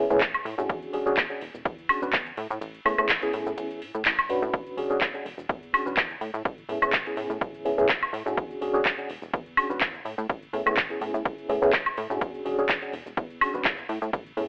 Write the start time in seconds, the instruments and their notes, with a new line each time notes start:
0.10 analog synth bass A2, reed electric piano B3 C#4 E4 G#4, shaker
0.21 analog synth bass A1, kick, clap, closed hi-hat, ride, shaker
0.34 closed hi-hat, high woodblock, shaker
0.45 analog synth bass A2, open hi-hat
0.58 analog synth bass A2, reed electric piano C#4 D4 F#4 G#4, shaker
0.69 analog synth bass E2, kick, closed hi-hat, ride, shaker
0.83 closed hi-hat, shaker
0.93 analog synth bass E1, reed electric piano C#4 D4 F#4 G#4, open hi-hat
1.06 analog synth bass E1, reed electric piano C#4 D4 F#4 G#4, shaker
1.17 analog synth bass E2, kick, clap, closed hi-hat, ride, shaker
1.30 reed electric piano C#4 D4 F#4 G#4, closed hi-hat, shaker
1.41 analog synth bass E1, open hi-hat
1.54 analog synth bass E1, shaker
1.65 analog synth bass E2, kick, closed hi-hat, ride, shaker
1.79 closed hi-hat, shaker
1.89 analog synth bass E1, reed electric piano C#4 D4 F#4 G#4, open hi-hat, high woodblock
2.02 analog synth bass E1, reed electric piano C#4 D4 F#4 B4, shaker
2.13 analog synth bass E2, kick, clap, closed hi-hat, ride, shaker
2.27 closed hi-hat, shaker
2.37 analog synth bass A2, open hi-hat
2.50 analog synth bass A2, shaker
2.61 analog synth bass A1, closed hi-hat, ride, shaker
2.75 closed hi-hat, shaker
2.85 analog synth bass A2, reed electric piano B3 C#4 E4 G#4, open hi-hat, high woodblock
2.98 analog synth bass A2, reed electric piano B3 C#4 E4 G#4, closed hi-hat, high woodblock, shaker
3.09 analog synth bass A1, clap, closed hi-hat, ride, shaker
3.21 reed electric piano B3 C#4 E4 G#4, closed hi-hat, shaker
3.33 analog synth bass A2, open hi-hat
3.47 analog synth bass A2, shaker
3.57 analog synth bass A1, closed hi-hat, ride, shaker
3.71 closed hi-hat, shaker
3.82 analog synth bass A2, open hi-hat
3.94 analog synth bass A2, closed hi-hat, shaker
4.05 analog synth bass A1, clap, closed hi-hat, ride, shaker
4.19 closed hi-hat, high woodblock, shaker
4.29 analog synth bass A2, reed electric piano C#4 D4 F#4 B4, open hi-hat
4.42 analog synth bass A2, shaker
4.53 analog synth bass E2, kick, closed hi-hat, ride, shaker
4.67 closed hi-hat, shaker
4.77 analog synth bass E1, reed electric piano C#4 D4 F#4 G#4, open hi-hat
4.90 analog synth bass E1, reed electric piano C#4 D4 F#4 G#4, shaker
5.01 analog synth bass E2, kick, clap, closed hi-hat, ride, shaker
5.14 reed electric piano C#4 D4 F#4 G#4, closed hi-hat, shaker
5.25 analog synth bass E1, open hi-hat
5.38 analog synth bass E1, shaker
5.49 analog synth bass E2, kick, closed hi-hat, ride, shaker
5.63 closed hi-hat, shaker
5.73 analog synth bass E1, reed electric piano C#4 D4 F#4 G#4, open hi-hat, high woodblock
5.86 analog synth bass E1, reed electric piano C#4 D4 F#4 B4, shaker
5.97 analog synth bass E2, kick, clap, closed hi-hat, ride, shaker
6.10 closed hi-hat, shaker
6.21 analog synth bass A2, open hi-hat
6.34 analog synth bass A2, shaker
6.45 analog synth bass A1, kick, closed hi-hat, ride, shaker
6.58 closed hi-hat, shaker
6.69 analog synth bass A2, reed electric piano B3 C#4 E4 G#4, open hi-hat
6.82 analog synth bass A2, reed electric piano B3 C#4 E4 G#4, high woodblock, shaker
6.93 analog synth bass A1, kick, clap, closed hi-hat, ride, shaker
7.06 reed electric piano B3 C#4 E4 G#4, closed hi-hat, shaker
7.17 analog synth bass A2, open hi-hat
7.30 analog synth bass A2, shaker
7.41 analog synth bass A1, kick, closed hi-hat, ride, shaker
7.55 closed hi-hat, shaker
7.65 analog synth bass A2, reed electric piano B3 C#4 E4 G#4, open hi-hat
7.78 analog synth bass A2, reed electric piano B3 C#4 E4 G#4, shaker
7.89 analog synth bass A1, kick, clap, closed hi-hat, ride, shaker
8.03 closed hi-hat, high woodblock, shaker
8.13 analog synth bass A2, open hi-hat
8.26 analog synth bass A2, reed electric piano C#4 D4 F#4 G#4, shaker
8.37 analog synth bass E2, kick, closed hi-hat, ride, shaker
8.51 closed hi-hat, shaker
8.61 analog synth bass E1, reed electric piano C#4 D4 F#4 G#4, open hi-hat
8.73 analog synth bass E1, reed electric piano C#4 D4 F#4 G#4, shaker
8.85 analog synth bass E2, kick, clap, closed hi-hat, ride, shaker
8.98 reed electric piano C#4 D4 F#4 G#4, closed hi-hat, shaker
9.09 analog synth bass E1, open hi-hat
9.22 analog synth bass E1, shaker
9.33 analog synth bass E2, kick, closed hi-hat, ride, shaker
9.46 closed hi-hat, shaker
9.57 analog synth bass E1, reed electric piano C#4 D4 F#4 G#4, open hi-hat, high woodblock
9.70 analog synth bass E1, reed electric piano C#4 D4 F#4 B4, shaker
9.81 analog synth bass E2, kick, clap, closed hi-hat, ride, shaker
9.95 closed hi-hat, shaker
10.05 analog synth bass A2, open hi-hat
10.18 analog synth bass A2, shaker
10.29 analog synth bass A1, kick, closed hi-hat, ride, shaker
10.43 closed hi-hat, shaker
10.53 analog synth bass A2, reed electric piano B3 C#4 E4 G#4, open hi-hat
10.66 analog synth bass A2, reed electric piano B3 C#4 E4 G#4, high woodblock, shaker
10.77 analog synth bass A1, kick, clap, closed hi-hat, ride, shaker
10.89 reed electric piano B3 C#4 E4 G#4, closed hi-hat, shaker
11.01 analog synth bass A2, open hi-hat
11.14 analog synth bass A2, closed hi-hat, shaker
11.25 analog synth bass A1, kick, closed hi-hat, ride, shaker
11.38 closed hi-hat, shaker
11.49 analog synth bass A2, reed electric piano B3 C#4 E4 G#4, open hi-hat
11.62 analog synth bass A2, reed electric piano B3 C#4 E4 G#4, shaker
11.73 analog synth bass A1, kick, clap, closed hi-hat, ride, shaker
11.86 closed hi-hat, high woodblock, shaker
11.97 analog synth bass A2, open hi-hat
12.10 analog synth bass A2, reed electric piano C#4 D4 F#4 G#4, shaker
12.21 analog synth bass E2, kick, closed hi-hat, ride, shaker
12.34 closed hi-hat, shaker
12.45 analog synth bass E1, reed electric piano C#4 D4 F#4 G#4, open hi-hat
12.58 analog synth bass E1, reed electric piano C#4 D4 F#4 G#4, shaker
12.69 analog synth bass E2, kick, clap, closed hi-hat, ride, shaker
12.82 reed electric piano C#4 D4 F#4 G#4, closed hi-hat, shaker
12.93 analog synth bass E1, open hi-hat
13.06 analog synth bass E1, shaker
13.17 analog synth bass E2, kick, closed hi-hat, ride, shaker
13.30 closed hi-hat, shaker
13.41 analog synth bass E1, reed electric piano C#4 D4 F#4 G#4, open hi-hat, high woodblock
13.54 analog synth bass E1, reed electric piano C#4 D4 F#4 B4, shaker
13.65 analog synth bass E2, kick, clap, closed hi-hat, ride, shaker
13.78 closed hi-hat, shaker
13.89 analog synth bass A2, open hi-hat
14.02 analog synth bass A2, shaker
14.13 analog synth bass A1, kick, closed hi-hat, ride, shaker
14.26 closed hi-hat, shaker
14.37 analog synth bass A2, reed electric piano B3 C#4 E4 G#4, open hi-hat